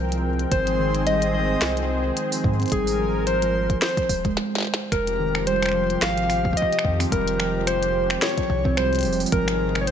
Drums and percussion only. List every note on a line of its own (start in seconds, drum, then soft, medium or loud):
0.12 closed hi-hat soft
0.39 closed hi-hat soft
0.52 kick loud
0.52 closed hi-hat medium
0.67 closed hi-hat soft
0.95 closed hi-hat soft
1.07 closed hi-hat medium
1.22 closed hi-hat soft
1.62 snare loud
1.62 closed hi-hat medium
1.77 closed hi-hat soft
2.17 closed hi-hat medium
2.32 open hi-hat medium
2.44 kick loud
2.60 closed hi-hat soft
2.62 closed hi-hat soft
2.66 closed hi-hat soft
2.68 closed hi-hat soft
2.70 kick loud
2.70 closed hi-hat soft
2.72 closed hi-hat medium
2.87 open hi-hat medium
3.27 closed hi-hat medium
3.42 closed hi-hat medium
3.70 kick medium
3.70 closed hi-hat soft
3.82 snare loud
3.82 closed hi-hat medium
3.97 kick loud
3.97 closed hi-hat medium
4.09 kick medium
4.09 open hi-hat medium
4.25 kick loud
4.25 closed hi-hat soft
4.37 snare medium
4.55 snare medium
4.58 snare medium
4.60 snare soft
4.62 snare soft
4.65 snare soft
4.67 snare soft
4.74 snare loud
4.92 finger snap medium
4.92 kick loud
4.92 closed hi-hat medium
5.07 closed hi-hat medium
5.35 finger snap medium
5.47 closed hi-hat medium
5.63 finger snap medium
5.63 closed hi-hat medium
5.66 finger snap soft
5.69 finger snap soft
5.72 finger snap soft
5.90 closed hi-hat soft
6.02 finger snap medium
6.02 snare loud
6.02 closed hi-hat medium
6.18 closed hi-hat medium
6.30 finger snap medium
6.30 open hi-hat medium
6.45 kick loud
6.53 kick medium
6.57 closed hi-hat medium
6.62 kick medium
6.73 closed hi-hat medium
6.79 finger snap medium
6.85 kick loud
7.00 finger snap medium
7.00 open hi-hat medium
7.12 kick loud
7.12 closed hi-hat medium
7.28 closed hi-hat medium
7.40 finger snap medium
7.67 finger snap soft
7.67 closed hi-hat medium
7.83 closed hi-hat medium
8.10 finger snap medium
8.10 closed hi-hat soft
8.22 snare loud
8.22 closed hi-hat medium
8.38 kick loud
8.38 closed hi-hat medium
8.50 kick medium
8.65 kick loud
8.77 finger snap medium
8.77 closed hi-hat medium
8.93 closed hi-hat soft
8.95 closed hi-hat soft
8.99 closed hi-hat soft
9.01 closed hi-hat soft
9.03 closed hi-hat soft
9.03 open hi-hat soft
9.13 open hi-hat soft
9.20 open hi-hat medium
9.26 open hi-hat medium
9.32 kick loud
9.32 closed hi-hat medium
9.48 finger snap medium
9.48 closed hi-hat medium
9.75 finger snap medium
9.87 closed hi-hat medium